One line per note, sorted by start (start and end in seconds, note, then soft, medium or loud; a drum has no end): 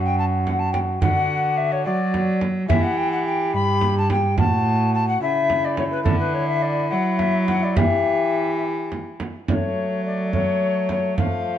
0.00 1.02 F#2 medium
0.00 1.01 F#4 medium
0.04 0.18 G5 loud
0.18 0.24 A5 medium
0.45 0.60 F#5 medium
0.45 frame drum soft
0.59 0.71 A5 medium
0.72 0.78 G5 medium
0.72 frame drum medium
1.01 1.87 D3 medium
1.01 1.84 F#4 medium
1.01 1.58 F#5 medium
1.01 frame drum medium
1.57 1.73 E5 medium
1.72 1.84 C#5 medium
1.84 2.69 F#3 medium
1.84 2.41 F#4 medium
1.84 2.40 D5 medium
2.14 frame drum soft
2.41 frame drum medium
2.68 3.55 E3 medium
2.68 4.34 G4 medium
2.68 2.84 E5 loud
2.68 frame drum medium
2.83 2.98 F#5 medium
2.97 3.10 G5 loud
3.11 3.25 F#5 medium
3.25 3.53 G5 loud
3.54 4.39 G2 medium
3.54 3.95 B5 loud
3.81 frame drum soft
3.98 4.10 A5 medium
4.10 4.38 G5 loud
4.10 frame drum medium
4.37 5.21 A2 medium
4.37 5.23 F#4 medium
4.37 4.93 A5 loud
4.37 frame drum medium
4.94 5.07 A5 loud
5.07 5.21 F#5 loud
5.21 6.04 C#3 medium
5.21 7.78 E4 medium
5.21 5.66 E5 loud
5.50 frame drum soft
5.64 5.77 D5 medium
5.77 5.84 C#5 medium
5.77 frame drum medium
5.91 6.02 B4 medium
6.03 6.93 D3 medium
6.03 6.18 A4 medium
6.03 frame drum medium
6.19 6.35 B4 medium
6.34 6.47 C#5 medium
6.47 6.63 E5 medium
6.62 6.88 D5 loud
6.89 7.78 F#3 medium
6.89 7.19 F#5 medium
7.18 7.46 E5 medium
7.18 frame drum soft
7.46 7.64 F#5 medium
7.46 frame drum medium
7.62 7.77 D5 medium
7.76 9.28 E3 medium
7.76 9.20 G4 medium
7.76 8.62 E5 medium
7.76 frame drum medium
8.92 frame drum soft
9.20 frame drum soft
9.48 11.20 F#3 medium
9.48 10.29 A3 medium
9.48 9.53 D5 medium
9.48 frame drum medium
9.52 10.01 C#5 medium
10.05 10.33 D5 medium
10.33 11.16 A3 medium
10.33 10.88 C#5 medium
10.33 frame drum soft
10.89 11.16 C#5 medium
10.89 frame drum soft
11.17 11.58 F3 medium
11.17 11.58 A3 medium
11.17 11.58 F5 medium
11.17 frame drum medium